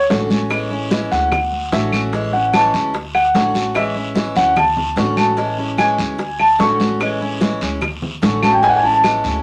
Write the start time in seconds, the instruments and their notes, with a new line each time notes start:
0.10 upright bass A1, steel-string acoustic guitar D3 A3 C#4 F#4, high bongo, low bongo, high conga, short guiro
0.30 steel-string acoustic guitar A3 C#4 F#4, high bongo, high conga, short guiro
0.50 steel-string acoustic guitar E3 G#3 C#4 E4, high bongo, high conga, long guiro, claves
0.70 steel-string acoustic guitar G#3 C#4 E4, high conga
0.91 steel-string acoustic guitar E3 G#3 C#4 E4, high bongo, high conga, short guiro
1.11 upright bass D2, steel-string acoustic guitar G#3 C#4 E4, grand piano F#5, high conga, short guiro
1.32 muted steel-string acoustic guitar stroke, high bongo, high conga, low conga, long guiro, claves
1.52 high conga
1.72 upright bass A1, steel-string acoustic guitar D3 A3 C#4 F#4, grand piano E5, high bongo, low bongo, high conga, short guiro
1.92 steel-string acoustic guitar A3 C#4 F#4, high conga, short guiro, claves
2.13 steel-string acoustic guitar E3 G#3 C#4 E4, high bongo, high conga, long guiro
2.33 steel-string acoustic guitar G#3 C#4 E4, grand piano F#5, high bongo, high conga
2.53 steel-string acoustic guitar E3 G#3 C#4 E4, grand piano A5, high bongo, high conga, short guiro, claves
2.74 upright bass D2, steel-string acoustic guitar G#3 C#4 E4, high conga, short guiro
2.94 muted steel-string acoustic guitar stroke, high bongo, high conga, long guiro
3.15 grand piano F#5, high bongo, high conga, claves
3.34 upright bass A1, steel-string acoustic guitar D3 A3 C#4 F#4, high bongo, low bongo, high conga, short guiro
3.54 steel-string acoustic guitar A3 C#4 F#4, high bongo, high conga, short guiro
3.74 steel-string acoustic guitar E3 G#3 C#4 E4, grand piano E5, high bongo, high conga, long guiro, claves
3.95 steel-string acoustic guitar G#3 C#4 E4, high conga
4.15 steel-string acoustic guitar E3 G#3 C#4 E4, high bongo, high conga, short guiro
4.35 upright bass D2, steel-string acoustic guitar G#3 C#4 E4, grand piano F#5, high conga, short guiro
4.56 grand piano A5, muted steel-string acoustic guitar stroke, high bongo, high conga, low conga, long guiro, claves
4.77 high conga, low conga
4.96 upright bass A1, steel-string acoustic guitar D3 A3 C#4 F#4, high bongo, low bongo, high conga, short guiro
5.16 steel-string acoustic guitar A3 C#4 F#4, grand piano A5, high conga, short guiro, claves
5.37 steel-string acoustic guitar E3 G#3 C#4 E4, high bongo, high conga, long guiro
5.58 steel-string acoustic guitar G#3 C#4 E4, high bongo, high conga
5.78 steel-string acoustic guitar E3 G#3 C#4 E4, grand piano G#5, high bongo, high conga, short guiro, claves
5.98 upright bass D2, steel-string acoustic guitar G#3 C#4 E4, high conga, short guiro
6.18 muted steel-string acoustic guitar stroke, high bongo, high conga, long guiro
6.39 grand piano A5, high bongo, high conga, claves
6.58 upright bass A1, steel-string acoustic guitar D3 A3 C#4 F#4, grand piano C#6, high bongo, low bongo, high conga, short guiro
6.80 steel-string acoustic guitar A3 C#4 F#4, high bongo, high conga, short guiro
7.00 steel-string acoustic guitar E3 G#3 C#4 E4, high bongo, high conga, long guiro, claves
7.20 steel-string acoustic guitar G#3 C#4 E4, high conga
7.40 steel-string acoustic guitar E3 G#3 C#4 E4, high bongo, high conga, short guiro
7.61 upright bass D2, steel-string acoustic guitar G#3 C#4 E4, high conga, short guiro
7.81 muted steel-string acoustic guitar stroke, high bongo, high conga, low conga, long guiro, claves
8.02 high conga, low conga
8.22 upright bass A1, steel-string acoustic guitar D3 A3 C#4 F#4, high bongo, low bongo, high conga, short guiro
8.42 steel-string acoustic guitar A3 C#4 F#4, grand piano A5, high conga, short guiro, claves
8.53 grand piano G5
8.62 steel-string acoustic guitar E3 G#3 C#4 E4, grand piano G#5, high bongo, high conga, long guiro
8.69 grand piano F#5
8.76 grand piano G#5
8.83 steel-string acoustic guitar G#3 C#4 E4, grand piano A5, high bongo, high conga
8.93 grand piano A5
9.03 steel-string acoustic guitar E3 G#3 C#4 E4, high bongo, high conga, short guiro, claves
9.24 upright bass D2, steel-string acoustic guitar G#3 C#4 E4, high conga, short guiro